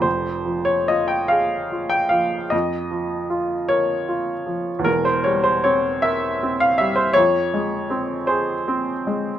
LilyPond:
<<
  \new Staff \with { instrumentName = "Upright piano" } { \time 12/8 \key f \minor \tempo 4. = 52 c''8. des''16 ees''16 g''16 f''8. g''16 f''8 ees''4. des''4. | bes'16 c''16 des''16 c''16 des''8 e''8. f''16 e''16 c''16 des''4. c''4. | }
  \new Staff \with { instrumentName = "Upright piano" } { \clef bass \time 12/8 \key f \minor <f,, f,>8 f8 f'8 aes'8 f'8 f8 f,8 f8 f'8 bes'8 f'8 f8 | <e,, e,>8 g8 c'8 bes'8 c'8 g8 f,8 aes8 c'8 aes'8 c'8 aes8 | }
>>